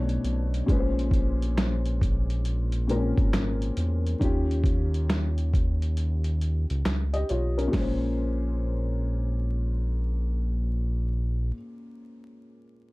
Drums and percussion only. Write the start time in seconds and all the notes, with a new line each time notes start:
0.09 closed hi-hat
0.24 closed hi-hat
0.54 closed hi-hat
0.68 kick, closed hi-hat
0.99 closed hi-hat
1.11 kick, closed hi-hat
1.42 closed hi-hat
1.57 finger snap, snare, closed hi-hat
1.85 closed hi-hat
2.01 kick, closed hi-hat
2.30 closed hi-hat
2.45 closed hi-hat
2.72 closed hi-hat
2.89 closed hi-hat
3.18 kick, closed hi-hat
3.33 finger snap, snare, closed hi-hat
3.62 closed hi-hat
3.77 closed hi-hat
4.07 closed hi-hat
4.21 kick, closed hi-hat
4.51 closed hi-hat
4.64 kick, closed hi-hat
4.94 closed hi-hat
5.10 finger snap, snare, closed hi-hat
5.38 closed hi-hat
5.54 kick, closed hi-hat
5.82 closed hi-hat
5.97 closed hi-hat
6.24 closed hi-hat
6.41 closed hi-hat
6.70 closed hi-hat
6.85 finger snap, snare, closed hi-hat
7.14 closed hi-hat
7.29 closed hi-hat
7.59 closed hi-hat
7.73 kick, snare, open hi-hat